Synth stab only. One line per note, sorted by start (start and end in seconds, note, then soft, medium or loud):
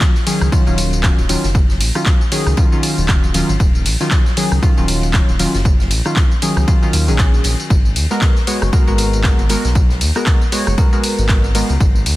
0.00 0.14 D#3 medium
0.00 0.14 F#3 medium
0.00 0.14 C#4 medium
0.00 0.14 F4 medium
0.26 0.49 D#3 medium
0.26 0.49 F#3 medium
0.26 0.49 C#4 medium
0.26 0.49 G#4 loud
0.52 0.63 D#3 medium
0.52 0.63 F#3 medium
0.52 0.64 C#4 medium
0.52 0.64 F4 loud
0.67 1.01 D#3 medium
0.67 1.01 F#3 medium
0.67 1.01 C#4 medium
0.67 1.01 F4 loud
1.03 1.20 D#3 medium
1.03 1.20 F#3 medium
1.03 1.20 C#4 medium
1.03 1.20 F4 medium
1.29 1.46 D#3 loud
1.29 1.46 F#3 medium
1.29 1.46 C#4 medium
1.29 1.46 F4 loud
1.95 2.19 D#3 medium
1.95 2.19 F#3 medium
1.95 2.19 C#4 medium
1.95 2.19 F4 medium
2.32 2.54 D#3 medium
2.32 2.54 F#3 medium
2.32 2.54 C#4 medium
2.32 2.54 G#4 loud
2.57 2.69 D#3 medium
2.57 2.69 F#3 medium
2.57 2.69 C#4 medium
2.57 2.69 F4 medium
2.72 3.06 D#3 medium
2.72 3.06 F#3 medium
2.72 3.06 C#4 medium
2.72 3.06 F4 loud
3.08 3.25 D#3 medium
3.08 3.25 F#3 medium
3.08 3.25 C#4 medium
3.08 3.26 F4 medium
3.34 3.51 D#3 loud
3.34 3.51 F#3 medium
3.34 3.51 C#4 medium
3.34 3.51 F4 loud
4.00 4.24 D#3 medium
4.00 4.24 F#3 medium
4.00 4.24 C#4 medium
4.00 4.24 F4 medium
4.37 4.59 D#3 medium
4.37 4.59 F#3 medium
4.37 4.59 C#4 medium
4.37 4.59 G#4 loud
4.62 4.74 D#3 medium
4.62 4.74 F#3 medium
4.62 4.74 C#4 medium
4.62 4.74 F4 loud
4.77 5.11 D#3 medium
4.77 5.11 F#3 medium
4.77 5.11 C#4 medium
4.77 5.11 F4 loud
5.14 5.30 D#3 medium
5.14 5.30 F#3 medium
5.14 5.31 C#4 medium
5.14 5.31 F4 medium
5.39 5.56 D#3 loud
5.39 5.56 F#3 medium
5.39 5.56 C#4 medium
5.39 5.56 F4 loud
6.05 6.29 D#3 medium
6.05 6.29 F#3 medium
6.05 6.30 C#4 medium
6.05 6.30 F4 medium
6.42 6.64 D#3 loud
6.42 6.64 F#3 medium
6.42 6.65 C#4 medium
6.42 6.65 G#4 loud
6.68 6.79 D#3 medium
6.68 6.79 F#3 medium
6.68 6.79 C#4 medium
6.68 6.79 F4 medium
6.82 7.05 D#3 loud
6.82 7.05 F#3 medium
6.82 7.05 C#4 medium
6.82 7.05 F4 loud
7.08 7.69 D#3 medium
7.08 7.69 F#3 medium
7.08 7.69 C#4 medium
7.08 7.69 G#4 loud
8.10 8.35 G#3 medium
8.10 8.35 B3 medium
8.10 8.35 F#4 medium
8.10 8.35 A#4 medium
8.47 8.69 G#3 medium
8.47 8.70 B3 medium
8.47 8.70 F#4 medium
8.47 8.70 C#5 loud
8.73 8.84 G#3 medium
8.73 8.84 B3 medium
8.73 8.84 F#4 medium
8.73 8.84 A#4 loud
8.87 9.21 G#3 medium
8.87 9.21 B3 medium
8.87 9.22 F#4 medium
8.87 9.22 A#4 loud
9.24 9.41 B3 medium
9.24 9.41 F#4 medium
9.24 9.41 A#4 medium
9.50 9.66 G#3 loud
9.50 9.66 B3 medium
9.50 9.66 F#4 medium
9.50 9.67 A#4 loud
10.16 10.40 G#3 medium
10.16 10.40 B3 medium
10.16 10.40 F#4 medium
10.16 10.40 A#4 medium
10.52 10.75 G#3 loud
10.52 10.75 B3 medium
10.52 10.75 F#4 medium
10.52 10.75 C#5 loud
10.78 10.89 G#3 medium
10.78 10.89 B3 medium
10.78 10.89 F#4 medium
10.78 10.89 A#4 medium
10.92 11.26 G#3 medium
10.92 11.27 B3 medium
10.92 11.27 F#4 medium
10.92 11.27 A#4 loud
11.29 11.46 G#3 medium
11.29 11.46 B3 medium
11.29 11.46 F#4 medium
11.29 11.46 A#4 medium
11.55 11.71 G#3 loud
11.55 11.71 B3 medium
11.55 11.72 F#4 medium
11.55 11.72 A#4 loud